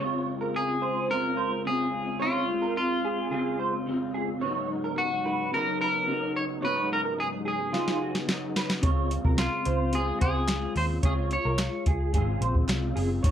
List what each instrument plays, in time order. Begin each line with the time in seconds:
Already playing: clean electric guitar C#3
0.00 clean electric guitar G#3 C4 F4 C#5
0.41 clean electric guitar A#4
0.56 clean electric guitar G#4
0.82 clean electric guitar C5
1.09 clean electric guitar C#3 G#3 C4 F4 A#4
1.37 clean electric guitar C5
1.65 clean electric guitar C#3 G#3 C4 F4 G#4
2.20 clean electric guitar C#3 G#3 C4 F4 C#5
2.48 clean electric guitar G#3 C4 F4
2.62 clean electric guitar A#4
2.77 clean electric guitar F4
3.05 clean electric guitar G#4
3.30 clean electric guitar C#3 G#3 C4 F4 G#4
3.59 clean electric guitar C5
3.86 clean electric guitar C#3 G#3 C4 F4
4.14 clean electric guitar G#4
4.40 clean electric guitar G#2 C#3 F#3 C#5
4.45 clean electric guitar B3 D#4
4.84 clean electric guitar A#4
4.98 clean electric guitar F#4
5.26 clean electric guitar B4
5.52 clean electric guitar C#3 F#3 B3 D#4 A#4
5.81 clean electric guitar A#4 B4
6.07 clean electric guitar C#3 F#3 B3 D#4
6.36 clean electric guitar C#5
6.61 clean electric guitar G#2 C#3 F#3 B4 C#5
6.66 clean electric guitar B3 D#4
6.93 clean electric guitar A#4
7.04 clean electric guitar A#4
7.20 clean electric guitar G#4
7.45 clean electric guitar G#4
7.72 clean electric guitar C#3 F#3 B3 D#4 F4, snare
7.88 snare
8.02 clean electric guitar F#4
8.15 snare
8.26 clean electric guitar C#3 F#3 B3 D#4, snare
8.56 clean electric guitar B4, snare
8.70 snare
8.81 picked electric bass C#2, clean electric guitar C#3 G#3 C#5, kick, closed hi-hat
8.85 clean electric guitar C4 F4
9.11 closed hi-hat
9.25 picked electric bass C2, clean electric guitar A#4, kick
9.38 clean electric guitar F4, snare, clap, closed hi-hat
9.65 picked electric bass C#2, clean electric guitar C5, closed hi-hat
9.92 clean electric guitar C#3 G#3 C4 F4 G#4, closed hi-hat
10.21 picked electric bass C#2, clean electric guitar G#4 C5, kick, closed hi-hat
10.48 clean electric guitar C#3 G#3 C4 F4, snare, clap, closed hi-hat
10.76 picked electric bass D#2, clean electric guitar C5, open hi-hat
11.03 picked electric bass C#2, clean electric guitar C#3 G#3 C4 F4 G#4 C#5, kick, closed hi-hat
11.31 clean electric guitar G#3 F4 C#5, closed hi-hat
11.45 picked electric bass C2, clean electric guitar A#4
11.58 snare, clap, closed hi-hat
11.86 picked electric bass C#2, clean electric guitar G#4, kick, closed hi-hat
12.13 picked electric bass G#1, clean electric guitar C#3 G#3 C4 G#4, kick, closed hi-hat
12.17 clean electric guitar F4
12.41 picked electric bass A#1, clean electric guitar C5, closed hi-hat
12.55 kick
12.68 picked electric bass C2, clean electric guitar C#3 G#3 C4 F4, snare, clap, closed hi-hat
12.96 picked electric bass F#1, clean electric guitar G#4, open hi-hat
13.23 picked electric bass G#1, clean electric guitar G#2 C#3 F#3 B3 D#4 C#5, kick, closed hi-hat